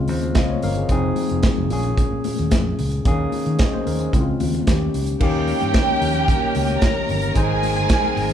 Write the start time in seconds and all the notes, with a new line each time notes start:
Already playing: C#3 G#3 C4 F4
0.08 D#2 C5, open hi-hat, high conga
0.21 closed hi-hat, high conga
0.35 C#2 D#5 F5, kick, snare, closed hi-hat, high conga
0.50 C#5
0.62 G1 A#4 F5, open hi-hat, muted conga, low conga
0.75 G#4, closed hi-hat
0.89 F1 F3 C4 D#4 G#4, kick, closed hi-hat, muted conga
1.16 open hi-hat, muted conga, high conga
1.30 F1, closed hi-hat
1.43 kick, snare, closed hi-hat
1.58 F1, high conga
1.70 A#1 A#2 A#3 C#4 G#4, open hi-hat, low conga
1.83 closed hi-hat, low conga
1.98 muted fingered electric bass stroke, kick, closed hi-hat, muted conga
2.13 A#2
2.24 open hi-hat, muted conga, high conga
2.38 D#2, closed hi-hat, high conga
2.51 F2, kick, snare, closed hi-hat, high conga
2.79 C#2, open hi-hat, muted conga, low conga
2.92 closed hi-hat
3.05 D#2 D#3 A#3 C#4 G#4, kick, closed hi-hat, muted conga
3.32 open hi-hat, muted conga, high conga
3.46 D#3, closed hi-hat
3.59 D#5, kick, snare, closed hi-hat
3.73 C5, high conga
3.87 D#2 A#4, open hi-hat, low conga
3.99 G#4, closed hi-hat, low conga
4.12 C#2 C#3 G#3 C4 E4, kick, closed hi-hat, muted conga
4.21 F4
4.40 D#2, open hi-hat, muted conga, high conga
4.54 closed hi-hat, high conga
4.67 D#2 D#3 A#3 C#4 G4, kick, snare, closed hi-hat, high conga
4.94 C#2, open hi-hat, low conga
5.06 closed hi-hat
5.20 D#2 D#3 A#3 C#4 G4 A#4 G5, kick, crash, muted conga
5.48 open hi-hat, muted conga, high conga
5.61 G2, closed hi-hat, high conga
5.74 kick, snare, closed hi-hat
5.88 high conga
6.02 D#2, open hi-hat, low conga
6.14 closed hi-hat, low conga
6.28 kick, closed hi-hat
6.55 C#2, open hi-hat, muted conga, high conga
6.69 closed hi-hat, high conga
6.81 A#4 A#5, kick, snare, closed hi-hat, high conga
7.09 G1, open hi-hat, muted conga, low conga
7.22 closed hi-hat
7.34 G#1 G#3 C4 D#4 G#4 C5 G#5, kick, closed hi-hat
7.63 open hi-hat, muted conga, high conga
7.76 G1, closed hi-hat, high conga
7.89 kick, snare, closed hi-hat
8.04 high conga
8.17 G#1, open hi-hat, low conga
8.29 closed hi-hat, low conga